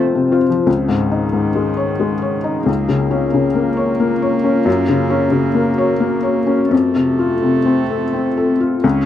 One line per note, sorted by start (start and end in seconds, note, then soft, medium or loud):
0.00 0.63 F2 soft
0.00 0.15 C3 soft
0.00 0.50 F3 soft
0.00 0.67 C4 medium
0.00 0.32 F4 soft
0.00 0.67 F4 medium
0.00 0.32 C5 soft
0.00 0.66 C5 medium
0.15 0.43 C3 soft
0.32 0.48 F4 soft
0.32 0.48 C5 soft
0.50 0.67 F3 soft
0.65 2.63 C#2 soft
0.65 2.63 D#3 soft
0.65 6.66 C#4 medium
0.65 2.63 D#4 soft
0.65 2.62 G#4 medium
0.88 1.25 G#2 soft
1.11 1.48 D#4 soft
1.33 1.70 G#2 soft
1.56 1.92 G#3 soft
1.77 2.13 C#5 soft
2.00 2.36 G#3 soft
2.22 2.58 C#5 soft
2.44 2.67 D#4 soft
2.66 4.62 C#2 soft
2.66 6.67 A#3 soft
2.66 4.65 F4 soft
2.66 6.71 A#4 medium
2.89 3.24 C#3 soft
3.11 3.46 C#4 soft
3.34 3.69 C#3 soft
3.55 3.91 A#3 soft
3.77 4.13 C#5 soft
4.00 4.35 A#3 soft
4.22 4.58 C#5 soft
4.44 4.66 C#4 soft
4.66 6.67 F#2 medium
4.66 6.71 F#4 medium
4.89 5.24 C#3 soft
5.10 5.46 C#4 soft
5.31 5.68 C#3 soft
5.55 5.91 A#3 soft
5.78 6.15 C#5 soft
6.00 6.38 A#3 soft
6.23 6.61 C#5 soft
6.46 6.71 C#4 soft
6.70 8.79 F2 soft
6.70 8.59 A3 medium
6.70 8.83 C4 medium
6.70 8.83 F4 medium
6.70 8.83 A4 medium
6.95 7.33 C3 soft
7.19 7.57 F4 soft
7.43 7.81 C3 soft
7.65 8.04 C4 soft
7.90 8.28 A4 soft
8.13 8.51 C4 soft
8.37 8.75 A4 soft
8.60 8.84 F4 soft
8.84 9.05 C#2 medium
8.84 9.05 C#4 medium